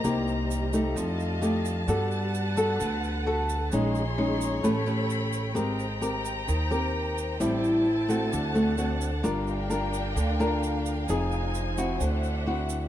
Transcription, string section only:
0, 0, Header, 1, 2, 480
1, 0, Start_track
1, 0, Tempo, 460123
1, 40, Time_signature, 4, 2, 24, 8
1, 13437, End_track
2, 0, Start_track
2, 0, Title_t, "String section"
2, 0, Program_c, 0, 48
2, 0, Note_on_c, 0, 55, 80
2, 0, Note_on_c, 0, 72, 70
2, 0, Note_on_c, 0, 75, 73
2, 0, Note_on_c, 0, 82, 83
2, 968, Note_off_c, 0, 82, 0
2, 969, Note_off_c, 0, 72, 0
2, 970, Note_off_c, 0, 75, 0
2, 994, Note_on_c, 0, 77, 65
2, 998, Note_on_c, 0, 81, 84
2, 999, Note_on_c, 0, 75, 64
2, 1949, Note_off_c, 0, 77, 0
2, 1951, Note_off_c, 0, 75, 0
2, 1957, Note_on_c, 0, 71, 75
2, 1961, Note_on_c, 0, 78, 75
2, 3839, Note_off_c, 0, 55, 0
2, 3853, Note_off_c, 0, 81, 0
2, 3862, Note_off_c, 0, 71, 0
2, 3864, Note_off_c, 0, 78, 0
2, 3887, Note_on_c, 0, 75, 68
2, 3889, Note_on_c, 0, 68, 76
2, 3889, Note_on_c, 0, 73, 77
2, 3889, Note_on_c, 0, 84, 82
2, 4826, Note_on_c, 0, 79, 73
2, 4828, Note_on_c, 0, 69, 73
2, 4829, Note_on_c, 0, 83, 84
2, 4836, Note_off_c, 0, 75, 0
2, 4837, Note_off_c, 0, 68, 0
2, 4837, Note_off_c, 0, 84, 0
2, 5787, Note_off_c, 0, 69, 0
2, 5787, Note_off_c, 0, 83, 0
2, 5788, Note_off_c, 0, 73, 0
2, 5797, Note_on_c, 0, 82, 90
2, 5799, Note_on_c, 0, 72, 74
2, 7701, Note_off_c, 0, 82, 0
2, 7716, Note_on_c, 0, 81, 89
2, 7722, Note_on_c, 0, 64, 77
2, 8637, Note_off_c, 0, 79, 0
2, 8673, Note_off_c, 0, 64, 0
2, 8689, Note_on_c, 0, 62, 75
2, 8691, Note_on_c, 0, 78, 71
2, 9603, Note_off_c, 0, 72, 0
2, 9621, Note_off_c, 0, 81, 0
2, 9637, Note_off_c, 0, 62, 0
2, 9638, Note_off_c, 0, 78, 0
2, 9652, Note_on_c, 0, 79, 93
2, 9653, Note_on_c, 0, 70, 72
2, 9654, Note_on_c, 0, 77, 76
2, 9657, Note_on_c, 0, 62, 83
2, 11549, Note_off_c, 0, 70, 0
2, 11549, Note_off_c, 0, 79, 0
2, 11551, Note_off_c, 0, 62, 0
2, 11556, Note_on_c, 0, 63, 77
2, 11557, Note_on_c, 0, 72, 74
2, 11557, Note_on_c, 0, 80, 87
2, 12500, Note_off_c, 0, 77, 0
2, 12510, Note_off_c, 0, 63, 0
2, 12511, Note_off_c, 0, 80, 0
2, 12512, Note_on_c, 0, 76, 67
2, 12516, Note_on_c, 0, 78, 77
2, 12518, Note_on_c, 0, 62, 74
2, 13437, Note_off_c, 0, 62, 0
2, 13437, Note_off_c, 0, 72, 0
2, 13437, Note_off_c, 0, 76, 0
2, 13437, Note_off_c, 0, 78, 0
2, 13437, End_track
0, 0, End_of_file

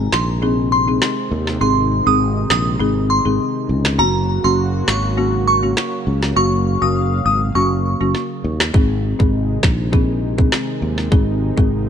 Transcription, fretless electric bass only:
0, 0, Header, 1, 2, 480
1, 0, Start_track
1, 0, Tempo, 594059
1, 1303, Time_signature, 4, 2, 24, 8
1, 9608, End_track
2, 0, Start_track
2, 0, Title_t, "Fretless electric bass"
2, 0, Program_c, 0, 35
2, 103, Note_on_c, 0, 34, 93
2, 791, Note_off_c, 0, 34, 0
2, 1062, Note_on_c, 0, 39, 94
2, 1267, Note_off_c, 0, 39, 0
2, 1302, Note_on_c, 0, 32, 103
2, 1615, Note_off_c, 0, 32, 0
2, 1670, Note_on_c, 0, 32, 104
2, 1970, Note_off_c, 0, 32, 0
2, 2023, Note_on_c, 0, 34, 89
2, 2227, Note_off_c, 0, 34, 0
2, 2263, Note_on_c, 0, 32, 94
2, 2575, Note_off_c, 0, 32, 0
2, 2630, Note_on_c, 0, 32, 86
2, 2726, Note_off_c, 0, 32, 0
2, 2983, Note_on_c, 0, 37, 89
2, 3223, Note_on_c, 0, 30, 96
2, 3235, Note_off_c, 0, 37, 0
2, 3535, Note_off_c, 0, 30, 0
2, 3590, Note_on_c, 0, 30, 97
2, 3890, Note_off_c, 0, 30, 0
2, 3943, Note_on_c, 0, 32, 87
2, 4631, Note_off_c, 0, 32, 0
2, 4903, Note_on_c, 0, 37, 89
2, 5107, Note_off_c, 0, 37, 0
2, 5143, Note_on_c, 0, 30, 102
2, 5455, Note_off_c, 0, 30, 0
2, 5510, Note_on_c, 0, 30, 93
2, 5810, Note_off_c, 0, 30, 0
2, 5863, Note_on_c, 0, 32, 91
2, 6067, Note_off_c, 0, 32, 0
2, 6103, Note_on_c, 0, 30, 89
2, 6415, Note_off_c, 0, 30, 0
2, 6470, Note_on_c, 0, 30, 87
2, 6566, Note_off_c, 0, 30, 0
2, 6823, Note_on_c, 0, 39, 92
2, 7027, Note_off_c, 0, 39, 0
2, 7063, Note_on_c, 0, 32, 95
2, 7375, Note_off_c, 0, 32, 0
2, 7433, Note_on_c, 0, 32, 98
2, 7732, Note_off_c, 0, 32, 0
2, 7783, Note_on_c, 0, 34, 96
2, 8471, Note_off_c, 0, 34, 0
2, 8744, Note_on_c, 0, 39, 90
2, 8948, Note_off_c, 0, 39, 0
2, 8984, Note_on_c, 0, 32, 102
2, 9296, Note_off_c, 0, 32, 0
2, 9353, Note_on_c, 0, 32, 105
2, 9608, Note_off_c, 0, 32, 0
2, 9608, End_track
0, 0, End_of_file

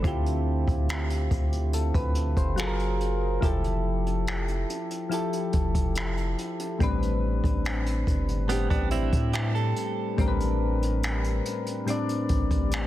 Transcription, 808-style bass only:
0, 0, Header, 1, 2, 480
1, 0, Start_track
1, 0, Key_signature, 0, "minor"
1, 0, Tempo, 845070
1, 24, Time_signature, 4, 2, 24, 8
1, 7310, End_track
2, 0, Start_track
2, 0, Title_t, "808-style bass"
2, 0, Program_c, 0, 38
2, 25, Note_on_c, 0, 38, 112
2, 370, Note_off_c, 0, 38, 0
2, 385, Note_on_c, 0, 38, 91
2, 730, Note_off_c, 0, 38, 0
2, 745, Note_on_c, 0, 38, 101
2, 1090, Note_off_c, 0, 38, 0
2, 1106, Note_on_c, 0, 38, 99
2, 1336, Note_off_c, 0, 38, 0
2, 1345, Note_on_c, 0, 30, 97
2, 1922, Note_off_c, 0, 30, 0
2, 1946, Note_on_c, 0, 29, 112
2, 2642, Note_off_c, 0, 29, 0
2, 3146, Note_on_c, 0, 29, 98
2, 3260, Note_off_c, 0, 29, 0
2, 3266, Note_on_c, 0, 29, 100
2, 3611, Note_off_c, 0, 29, 0
2, 3866, Note_on_c, 0, 33, 103
2, 4211, Note_off_c, 0, 33, 0
2, 4226, Note_on_c, 0, 33, 90
2, 4571, Note_off_c, 0, 33, 0
2, 4585, Note_on_c, 0, 31, 100
2, 4930, Note_off_c, 0, 31, 0
2, 4946, Note_on_c, 0, 33, 101
2, 5175, Note_off_c, 0, 33, 0
2, 5185, Note_on_c, 0, 45, 102
2, 5530, Note_off_c, 0, 45, 0
2, 5786, Note_on_c, 0, 33, 115
2, 6482, Note_off_c, 0, 33, 0
2, 6987, Note_on_c, 0, 33, 101
2, 7101, Note_off_c, 0, 33, 0
2, 7107, Note_on_c, 0, 33, 103
2, 7310, Note_off_c, 0, 33, 0
2, 7310, End_track
0, 0, End_of_file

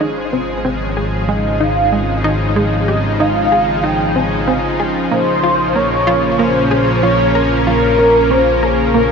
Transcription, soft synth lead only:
0, 0, Header, 1, 2, 480
1, 0, Start_track
1, 0, Tempo, 638298
1, 8, Time_signature, 4, 2, 24, 8
1, 6857, End_track
2, 0, Start_track
2, 0, Title_t, "Soft synth lead"
2, 0, Program_c, 0, 80
2, 11, Note_on_c, 0, 72, 95
2, 492, Note_on_c, 0, 73, 94
2, 504, Note_off_c, 0, 72, 0
2, 967, Note_off_c, 0, 73, 0
2, 971, Note_on_c, 0, 75, 100
2, 1212, Note_on_c, 0, 77, 105
2, 1223, Note_off_c, 0, 75, 0
2, 1690, Note_off_c, 0, 77, 0
2, 1926, Note_on_c, 0, 75, 94
2, 2405, Note_on_c, 0, 77, 96
2, 2416, Note_off_c, 0, 75, 0
2, 2886, Note_on_c, 0, 79, 107
2, 2897, Note_off_c, 0, 77, 0
2, 3125, Note_on_c, 0, 80, 106
2, 3137, Note_off_c, 0, 79, 0
2, 3607, Note_off_c, 0, 80, 0
2, 3847, Note_on_c, 0, 72, 117
2, 4324, Note_on_c, 0, 73, 110
2, 4336, Note_off_c, 0, 72, 0
2, 4805, Note_on_c, 0, 72, 108
2, 4816, Note_off_c, 0, 73, 0
2, 5281, Note_off_c, 0, 72, 0
2, 5285, Note_on_c, 0, 73, 105
2, 5621, Note_off_c, 0, 73, 0
2, 5762, Note_on_c, 0, 70, 109
2, 6242, Note_on_c, 0, 72, 99
2, 6253, Note_off_c, 0, 70, 0
2, 6484, Note_on_c, 0, 68, 90
2, 6495, Note_off_c, 0, 72, 0
2, 6726, Note_on_c, 0, 70, 88
2, 6737, Note_off_c, 0, 68, 0
2, 6857, Note_off_c, 0, 70, 0
2, 6857, End_track
0, 0, End_of_file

